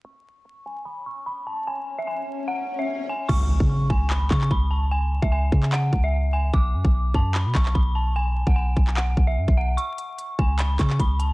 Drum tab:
CC |----------------|----------------|x---------------|----------------|
HH |----------------|----------------|----------------|----------------|
CP |----------------|----------------|--------x-xx----|-------xx-------|
BD |----------------|----------------|o--o--o---o-o---|---o--o---o-----|

CC |----------------|----------------|----------------|
HH |----------------|----------------|x-x-x---x-x-x-x-|
CP |--------x-xx----|-------xx-------|--------x-xx----|
BD |o--o--o---o-o---|---o--o---o--o--|------o---o-o---|